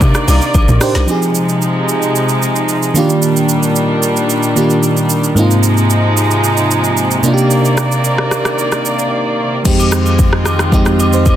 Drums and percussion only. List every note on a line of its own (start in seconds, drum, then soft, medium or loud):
0.00 kick loud
0.00 high agogo medium
0.00 shaker medium
0.15 cross-stick loud
0.15 shaker medium
0.28 open hi-hat soft
0.28 high agogo medium
0.28 shaker medium
0.41 shaker medium
0.54 kick loud
0.54 high agogo medium
0.54 shaker medium
0.68 mid tom loud
0.68 shaker medium
0.81 cross-stick loud
0.81 open hi-hat medium
0.81 shaker loud
0.95 snare medium
0.95 high agogo medium
0.95 shaker medium
1.08 shaker medium
1.22 shaker medium
1.35 shaker loud
1.49 shaker soft
1.62 shaker medium
1.89 shaker medium
2.02 shaker medium
2.16 shaker medium
2.29 shaker soft
2.42 shaker medium
2.56 shaker soft
2.69 shaker medium
2.83 shaker medium
2.95 shaker loud
3.10 shaker medium
3.22 shaker medium
3.37 shaker medium
3.49 shaker loud
3.63 shaker medium
3.76 shaker medium
4.03 shaker medium
4.17 shaker soft
4.30 shaker medium
4.43 shaker soft
4.57 shaker medium
4.70 shaker soft
4.83 shaker medium
4.97 shaker medium
5.10 shaker medium
5.24 shaker medium
5.37 shaker medium
5.51 shaker medium
5.63 shaker loud
5.77 shaker soft
5.90 shaker medium
6.17 shaker medium
6.31 shaker soft
6.44 shaker medium
6.57 shaker medium
6.71 shaker medium
6.84 shaker soft
6.97 shaker medium
7.11 shaker soft
7.24 shaker medium
7.38 shaker medium
7.51 shaker medium
7.65 shaker medium
7.78 cross-stick medium
7.78 shaker loud
7.92 shaker soft
8.05 shaker medium
8.18 cross-stick medium
8.31 cross-stick medium
8.31 shaker medium
8.45 cross-stick loud
8.45 shaker soft
8.59 shaker medium
8.72 cross-stick medium
8.72 shaker soft
8.85 shaker medium
8.99 shaker medium
9.65 kick loud
9.65 crash medium
9.65 shaker medium
9.80 high agogo medium
9.80 shaker medium
9.92 cross-stick loud
9.92 shaker loud
10.06 high agogo medium
10.06 shaker medium
10.19 kick loud
10.19 shaker medium
10.33 cross-stick medium
10.46 cross-stick medium
10.46 high agogo medium
10.46 shaker medium
10.59 cross-stick loud
10.59 shaker medium
10.72 kick loud
10.72 high agogo medium
10.72 shaker medium
10.86 cross-stick loud
10.86 shaker medium
10.99 high agogo medium
10.99 shaker medium
11.13 shaker medium
11.26 kick loud
11.26 high agogo medium
11.26 shaker medium